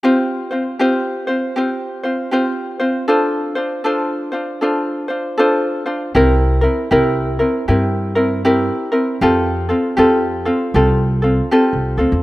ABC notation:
X:1
M:4/4
L:1/16
Q:"Swing" 1/4=78
K:F
V:1 name="Ukulele"
[CFGc]2 [CFc]2 [CFGc]2 [CFc]2 [CFGc]2 [CFc]2 [CFGc]2 [CFc]2 | [DFAc]2 [DFc]2 [DFAc]2 [DFc]2 [DFAc]2 [DFc]2 [DFAc]2 [DFc]2 | [CEGB]2 [CEB]2 [CEGB]2 [CEB]2 [CEGB]2 [CEB]2 [CEGB]2 [CEB]2 | [CFGA]2 [CFA]2 [CFGA]2 [CFA]2 [CFGA]2 [CFA]2 [CFGA]2 [CFA]2 |]
V:2 name="Upright bass" clef=bass
z16 | z16 | C,,4 C,,4 G,,8 | F,,4 F,,4 C,,4- C,, C,, D,, E,, |]